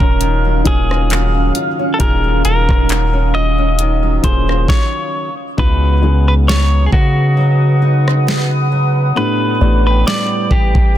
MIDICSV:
0, 0, Header, 1, 8, 480
1, 0, Start_track
1, 0, Tempo, 895522
1, 1071, Time_signature, 4, 2, 24, 8
1, 5885, End_track
2, 0, Start_track
2, 0, Title_t, "Ambient pad"
2, 0, Program_c, 0, 92
2, 0, Note_on_c, 0, 61, 75
2, 0, Note_on_c, 0, 77, 67
2, 0, Note_on_c, 0, 89, 88
2, 1053, Note_off_c, 0, 89, 0
2, 1072, Note_on_c, 0, 87, 82
2, 2490, Note_off_c, 0, 61, 0
2, 2490, Note_off_c, 0, 77, 0
2, 2497, Note_off_c, 0, 87, 0
2, 2990, Note_on_c, 0, 71, 81
2, 2990, Note_on_c, 0, 87, 84
2, 2991, Note_on_c, 0, 78, 74
2, 4891, Note_off_c, 0, 87, 0
2, 4892, Note_off_c, 0, 78, 0
2, 4912, Note_on_c, 0, 86, 82
2, 4913, Note_on_c, 0, 79, 68
2, 5885, Note_off_c, 0, 71, 0
2, 5885, Note_off_c, 0, 79, 0
2, 5885, Note_off_c, 0, 86, 0
2, 5885, End_track
3, 0, Start_track
3, 0, Title_t, "Synth pluck"
3, 0, Program_c, 1, 84
3, 0, Note_on_c, 1, 75, 51
3, 0, Note_on_c, 1, 80, 54
3, 831, Note_off_c, 1, 75, 0
3, 972, Note_off_c, 1, 80, 0
3, 1313, Note_on_c, 1, 70, 71
3, 2513, Note_off_c, 1, 70, 0
3, 2989, Note_on_c, 1, 71, 57
3, 4191, Note_off_c, 1, 71, 0
3, 5152, Note_on_c, 1, 74, 55
3, 5308, Note_on_c, 1, 79, 53
3, 5885, Note_off_c, 1, 74, 0
3, 5885, Note_off_c, 1, 79, 0
3, 5885, End_track
4, 0, Start_track
4, 0, Title_t, "Clean electric guitar"
4, 0, Program_c, 2, 27
4, 0, Note_on_c, 2, 70, 102
4, 357, Note_off_c, 2, 70, 0
4, 359, Note_on_c, 2, 68, 85
4, 814, Note_off_c, 2, 68, 0
4, 1039, Note_on_c, 2, 69, 67
4, 1072, Note_off_c, 2, 69, 0
4, 1074, Note_on_c, 2, 70, 93
4, 1296, Note_off_c, 2, 70, 0
4, 1314, Note_on_c, 2, 70, 93
4, 1791, Note_off_c, 2, 70, 0
4, 1793, Note_on_c, 2, 75, 108
4, 2272, Note_off_c, 2, 75, 0
4, 2274, Note_on_c, 2, 72, 88
4, 2513, Note_off_c, 2, 72, 0
4, 2515, Note_on_c, 2, 73, 83
4, 2861, Note_off_c, 2, 73, 0
4, 2998, Note_on_c, 2, 71, 109
4, 3361, Note_off_c, 2, 71, 0
4, 3367, Note_on_c, 2, 71, 96
4, 3396, Note_off_c, 2, 71, 0
4, 3475, Note_on_c, 2, 73, 105
4, 3664, Note_off_c, 2, 73, 0
4, 3679, Note_on_c, 2, 68, 70
4, 3712, Note_off_c, 2, 68, 0
4, 3714, Note_on_c, 2, 66, 85
4, 4651, Note_off_c, 2, 66, 0
4, 4917, Note_on_c, 2, 71, 102
4, 5282, Note_off_c, 2, 71, 0
4, 5288, Note_on_c, 2, 71, 98
4, 5387, Note_off_c, 2, 71, 0
4, 5398, Note_on_c, 2, 74, 103
4, 5637, Note_on_c, 2, 67, 92
4, 5641, Note_off_c, 2, 74, 0
4, 5885, Note_off_c, 2, 67, 0
4, 5885, End_track
5, 0, Start_track
5, 0, Title_t, "Felt piano"
5, 0, Program_c, 3, 0
5, 0, Control_c, 3, 64, 127
5, 0, Note_on_c, 3, 51, 72
5, 0, Note_on_c, 3, 58, 69
5, 0, Note_on_c, 3, 61, 71
5, 0, Note_on_c, 3, 66, 80
5, 0, Note_on_c, 3, 77, 67
5, 345, Note_off_c, 3, 51, 0
5, 345, Note_on_c, 3, 51, 71
5, 348, Note_off_c, 3, 58, 0
5, 348, Note_on_c, 3, 58, 68
5, 351, Note_off_c, 3, 61, 0
5, 351, Note_on_c, 3, 61, 65
5, 355, Note_on_c, 3, 65, 64
5, 358, Note_on_c, 3, 68, 82
5, 890, Note_off_c, 3, 51, 0
5, 892, Note_off_c, 3, 58, 0
5, 893, Note_off_c, 3, 61, 0
5, 895, Note_off_c, 3, 65, 0
5, 897, Note_off_c, 3, 68, 0
5, 1063, Note_on_c, 3, 51, 72
5, 1067, Note_on_c, 3, 58, 69
5, 1070, Note_on_c, 3, 61, 67
5, 1074, Note_on_c, 3, 65, 69
5, 1077, Note_on_c, 3, 68, 85
5, 1784, Note_off_c, 3, 51, 0
5, 1786, Note_off_c, 3, 58, 0
5, 1787, Note_off_c, 3, 61, 0
5, 1789, Note_off_c, 3, 65, 0
5, 1791, Note_off_c, 3, 68, 0
5, 2264, Note_on_c, 3, 51, 70
5, 2267, Note_on_c, 3, 58, 66
5, 2271, Note_on_c, 3, 61, 68
5, 2274, Note_on_c, 3, 65, 66
5, 2277, Note_on_c, 3, 68, 78
5, 2508, Note_off_c, 3, 51, 0
5, 2509, Note_off_c, 3, 58, 0
5, 2511, Note_off_c, 3, 61, 0
5, 2513, Note_off_c, 3, 65, 0
5, 2514, Note_off_c, 3, 68, 0
5, 2519, Control_c, 3, 64, 0
5, 2520, Note_off_c, 3, 66, 0
5, 2523, Note_off_c, 3, 77, 0
5, 2986, Note_on_c, 3, 49, 73
5, 2989, Note_on_c, 3, 56, 70
5, 2993, Note_on_c, 3, 59, 69
5, 2996, Note_on_c, 3, 63, 66
5, 3000, Note_on_c, 3, 66, 84
5, 3106, Control_c, 3, 64, 127
5, 3173, Note_off_c, 3, 49, 0
5, 3174, Note_off_c, 3, 56, 0
5, 3176, Note_off_c, 3, 59, 0
5, 3177, Note_off_c, 3, 63, 0
5, 3179, Note_off_c, 3, 66, 0
5, 3224, Note_on_c, 3, 49, 72
5, 3227, Note_on_c, 3, 56, 66
5, 3230, Note_on_c, 3, 59, 70
5, 3234, Note_on_c, 3, 63, 66
5, 3238, Note_on_c, 3, 68, 76
5, 3944, Note_off_c, 3, 49, 0
5, 3946, Note_off_c, 3, 56, 0
5, 3947, Note_off_c, 3, 59, 0
5, 3949, Note_off_c, 3, 63, 0
5, 3951, Note_off_c, 3, 68, 0
5, 4905, Note_on_c, 3, 45, 73
5, 4909, Note_on_c, 3, 57, 71
5, 4911, Note_on_c, 3, 59, 68
5, 4914, Note_on_c, 3, 62, 68
5, 4918, Control_c, 3, 64, 0
5, 4919, Note_on_c, 3, 67, 84
5, 5000, Control_c, 3, 64, 127
5, 5092, Note_off_c, 3, 45, 0
5, 5094, Note_off_c, 3, 57, 0
5, 5095, Note_off_c, 3, 59, 0
5, 5097, Note_off_c, 3, 62, 0
5, 5099, Note_off_c, 3, 67, 0
5, 5145, Note_on_c, 3, 45, 74
5, 5149, Note_on_c, 3, 57, 69
5, 5151, Note_on_c, 3, 59, 69
5, 5155, Note_on_c, 3, 62, 73
5, 5158, Note_on_c, 3, 67, 81
5, 5865, Note_off_c, 3, 45, 0
5, 5867, Note_off_c, 3, 57, 0
5, 5868, Note_off_c, 3, 59, 0
5, 5870, Note_off_c, 3, 62, 0
5, 5871, Note_off_c, 3, 67, 0
5, 5885, End_track
6, 0, Start_track
6, 0, Title_t, "Nylon-string guitar"
6, 0, Program_c, 4, 24
6, 0, Note_on_c, 4, 51, 77
6, 0, Note_on_c, 4, 54, 59
6, 0, Note_on_c, 4, 65, 68
6, 1, Note_on_c, 4, 61, 65
6, 109, Note_off_c, 4, 51, 0
6, 111, Note_on_c, 4, 51, 82
6, 238, Note_off_c, 4, 54, 0
6, 241, Note_on_c, 4, 54, 58
6, 349, Note_off_c, 4, 61, 0
6, 351, Note_on_c, 4, 61, 61
6, 473, Note_off_c, 4, 65, 0
6, 480, Note_on_c, 4, 65, 68
6, 590, Note_off_c, 4, 54, 0
6, 592, Note_on_c, 4, 54, 66
6, 718, Note_off_c, 4, 61, 0
6, 720, Note_on_c, 4, 61, 60
6, 826, Note_off_c, 4, 65, 0
6, 832, Note_on_c, 4, 65, 72
6, 959, Note_off_c, 4, 61, 0
6, 961, Note_on_c, 4, 61, 64
6, 1069, Note_off_c, 4, 51, 0
6, 1071, Note_on_c, 4, 51, 85
6, 1199, Note_off_c, 4, 54, 0
6, 1201, Note_on_c, 4, 54, 60
6, 1309, Note_off_c, 4, 61, 0
6, 1311, Note_on_c, 4, 61, 57
6, 1434, Note_off_c, 4, 65, 0
6, 1441, Note_on_c, 4, 65, 63
6, 1549, Note_off_c, 4, 54, 0
6, 1552, Note_on_c, 4, 54, 61
6, 1677, Note_off_c, 4, 61, 0
6, 1679, Note_on_c, 4, 61, 63
6, 1783, Note_off_c, 4, 65, 0
6, 1790, Note_on_c, 4, 65, 66
6, 1918, Note_off_c, 4, 61, 0
6, 1920, Note_on_c, 4, 61, 64
6, 2029, Note_off_c, 4, 51, 0
6, 2031, Note_on_c, 4, 51, 79
6, 2158, Note_off_c, 4, 54, 0
6, 2160, Note_on_c, 4, 54, 59
6, 2269, Note_off_c, 4, 61, 0
6, 2271, Note_on_c, 4, 61, 66
6, 2395, Note_off_c, 4, 65, 0
6, 2402, Note_on_c, 4, 65, 65
6, 2563, Note_off_c, 4, 65, 0
6, 2831, Note_off_c, 4, 51, 0
6, 2831, Note_off_c, 4, 54, 0
6, 2831, Note_off_c, 4, 61, 0
6, 2992, Note_on_c, 4, 49, 84
6, 2995, Note_on_c, 4, 63, 71
6, 3231, Note_on_c, 4, 59, 58
6, 3471, Note_on_c, 4, 54, 64
6, 3709, Note_off_c, 4, 59, 0
6, 3711, Note_on_c, 4, 59, 65
6, 3944, Note_off_c, 4, 54, 0
6, 3951, Note_on_c, 4, 54, 71
6, 4185, Note_off_c, 4, 63, 0
6, 4191, Note_on_c, 4, 63, 70
6, 4430, Note_off_c, 4, 59, 0
6, 4432, Note_on_c, 4, 59, 63
6, 4667, Note_off_c, 4, 54, 0
6, 4673, Note_on_c, 4, 54, 61
6, 4911, Note_off_c, 4, 49, 0
6, 4911, Note_off_c, 4, 63, 0
6, 4912, Note_on_c, 4, 45, 86
6, 4915, Note_on_c, 4, 62, 67
6, 4964, Note_off_c, 4, 54, 0
6, 5150, Note_off_c, 4, 59, 0
6, 5152, Note_on_c, 4, 59, 64
6, 5391, Note_on_c, 4, 55, 63
6, 5625, Note_off_c, 4, 59, 0
6, 5632, Note_on_c, 4, 59, 62
6, 5864, Note_off_c, 4, 55, 0
6, 5885, Note_off_c, 4, 45, 0
6, 5885, Note_off_c, 4, 59, 0
6, 5885, Note_off_c, 4, 62, 0
6, 5885, End_track
7, 0, Start_track
7, 0, Title_t, "808-style bass"
7, 0, Program_c, 5, 38
7, 1, Note_on_c, 5, 27, 98
7, 337, Note_off_c, 5, 27, 0
7, 351, Note_on_c, 5, 27, 101
7, 812, Note_off_c, 5, 27, 0
7, 1071, Note_on_c, 5, 27, 112
7, 1301, Note_off_c, 5, 27, 0
7, 1311, Note_on_c, 5, 27, 102
7, 1435, Note_off_c, 5, 27, 0
7, 1441, Note_on_c, 5, 27, 102
7, 2250, Note_off_c, 5, 27, 0
7, 2271, Note_on_c, 5, 27, 101
7, 2501, Note_off_c, 5, 27, 0
7, 2991, Note_on_c, 5, 37, 112
7, 3690, Note_off_c, 5, 37, 0
7, 3712, Note_on_c, 5, 49, 111
7, 4890, Note_off_c, 5, 49, 0
7, 5152, Note_on_c, 5, 33, 110
7, 5382, Note_off_c, 5, 33, 0
7, 5633, Note_on_c, 5, 33, 101
7, 5756, Note_off_c, 5, 33, 0
7, 5762, Note_on_c, 5, 33, 98
7, 5885, Note_off_c, 5, 33, 0
7, 5885, End_track
8, 0, Start_track
8, 0, Title_t, "Drums"
8, 1, Note_on_c, 9, 36, 80
8, 55, Note_off_c, 9, 36, 0
8, 111, Note_on_c, 9, 42, 72
8, 164, Note_off_c, 9, 42, 0
8, 351, Note_on_c, 9, 36, 90
8, 351, Note_on_c, 9, 42, 67
8, 404, Note_off_c, 9, 36, 0
8, 404, Note_off_c, 9, 42, 0
8, 488, Note_on_c, 9, 37, 92
8, 542, Note_off_c, 9, 37, 0
8, 591, Note_on_c, 9, 42, 66
8, 601, Note_on_c, 9, 39, 116
8, 644, Note_off_c, 9, 42, 0
8, 654, Note_off_c, 9, 39, 0
8, 831, Note_on_c, 9, 42, 71
8, 884, Note_off_c, 9, 42, 0
8, 1071, Note_on_c, 9, 36, 106
8, 1071, Note_on_c, 9, 42, 70
8, 1125, Note_off_c, 9, 36, 0
8, 1125, Note_off_c, 9, 42, 0
8, 1312, Note_on_c, 9, 42, 75
8, 1366, Note_off_c, 9, 42, 0
8, 1441, Note_on_c, 9, 36, 98
8, 1449, Note_on_c, 9, 37, 69
8, 1494, Note_off_c, 9, 36, 0
8, 1503, Note_off_c, 9, 37, 0
8, 1551, Note_on_c, 9, 42, 79
8, 1560, Note_on_c, 9, 39, 116
8, 1605, Note_off_c, 9, 42, 0
8, 1614, Note_off_c, 9, 39, 0
8, 2030, Note_on_c, 9, 42, 69
8, 2083, Note_off_c, 9, 42, 0
8, 2271, Note_on_c, 9, 36, 87
8, 2271, Note_on_c, 9, 42, 68
8, 2324, Note_off_c, 9, 36, 0
8, 2325, Note_off_c, 9, 42, 0
8, 2408, Note_on_c, 9, 37, 91
8, 2461, Note_off_c, 9, 37, 0
8, 2511, Note_on_c, 9, 36, 105
8, 2518, Note_on_c, 9, 38, 87
8, 2564, Note_off_c, 9, 36, 0
8, 2572, Note_off_c, 9, 38, 0
8, 2991, Note_on_c, 9, 36, 101
8, 3044, Note_off_c, 9, 36, 0
8, 3481, Note_on_c, 9, 38, 113
8, 3534, Note_off_c, 9, 38, 0
8, 3712, Note_on_c, 9, 36, 94
8, 3765, Note_off_c, 9, 36, 0
8, 4329, Note_on_c, 9, 37, 98
8, 4383, Note_off_c, 9, 37, 0
8, 4440, Note_on_c, 9, 38, 113
8, 4494, Note_off_c, 9, 38, 0
8, 5401, Note_on_c, 9, 38, 116
8, 5454, Note_off_c, 9, 38, 0
8, 5632, Note_on_c, 9, 36, 98
8, 5686, Note_off_c, 9, 36, 0
8, 5762, Note_on_c, 9, 36, 86
8, 5815, Note_off_c, 9, 36, 0
8, 5885, End_track
0, 0, End_of_file